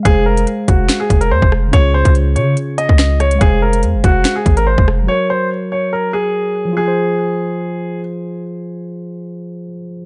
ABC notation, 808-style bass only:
X:1
M:4/4
L:1/16
Q:1/4=143
K:Fphr
V:1 name="808-style bass" clef=bass
F,,,4 z2 F,,,2 z2 F,,,2 F,, F,,,3 | D,,3 D,,3 D,2 z3 D,,4- D,, | F,,,4 F,, F,,, F,,,2 z2 A,,,3 F,,,3 | z16 |
z16 | z16 |]